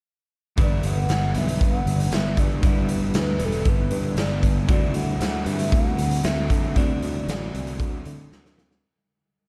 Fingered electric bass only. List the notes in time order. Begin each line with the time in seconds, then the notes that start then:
0.58 G1
0.84 G1
1.10 G1
1.35 B1
1.61 G1
1.86 G1
2.11 G1
2.38 G2
2.63 G1
3.14 D2
3.40 E1
3.66 G1
3.91 G2
4.16 G1
4.69 D2
4.94 D2
5.20 D2
5.46 G2
5.72 D2
5.98 D2
6.24 D2
6.50 D3
6.76 D2
7.28 A1
7.54 C2
7.80 D2
8.06 D3
8.32 D2